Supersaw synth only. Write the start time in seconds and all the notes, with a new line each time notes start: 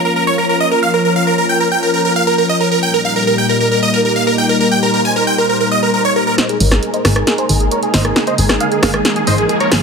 0.05 A#4
0.16 A#4
0.27 C#5
0.38 A#4
0.49 A#4
0.60 D#5
0.71 A#4
0.83 F5
0.94 A#4
1.05 A#4
1.16 F5
1.27 A#4
1.38 A#4
1.49 G5
1.60 A#4
1.72 G5
1.83 A#4
1.94 A#4
2.05 A#4
2.16 F5
2.27 A#4
2.38 A#4
2.49 D#5
2.60 A#4
2.72 A#4
2.83 G5
2.94 A#4
3.05 F5
3.16 A#4
3.27 A#4
3.38 G5
3.49 A#4
3.60 A#4
3.72 A#4
3.83 D#5
3.94 A#4
4.05 A#4
4.16 F5
4.27 A#4
4.38 G5
4.49 A#4
4.60 A#4
4.71 G5
4.83 A#4
4.94 A#4
5.05 G#5
5.16 A#4
5.27 G5
5.38 A#4
5.49 A#4
5.60 A#4
5.71 D#5
5.83 A#4
5.94 A#4
6.05 C#5
6.16 A#4
6.27 A#4
6.38 C5 D#5
6.49 G#4
6.60 A#4 C#5
6.72 G#4
6.83 G#4
6.94 C5 D#5
7.05 G#4
7.16 G#4
7.27 G#4
7.38 G#4 C5
7.50 G#4
7.61 G#4
7.72 A#4 C#5
7.83 G#4
7.94 C5 D#5
8.05 G#4
8.16 G#4
8.27 C5 D#5
8.38 G#4
8.50 G#4
8.61 G#4 F5
8.72 G#4
8.83 G#4 F5
8.94 G#4
9.05 G#4
9.16 G#4
9.27 C5 D#5
9.38 G#4
9.49 G#4
9.60 A#4 C#5
9.71 G#4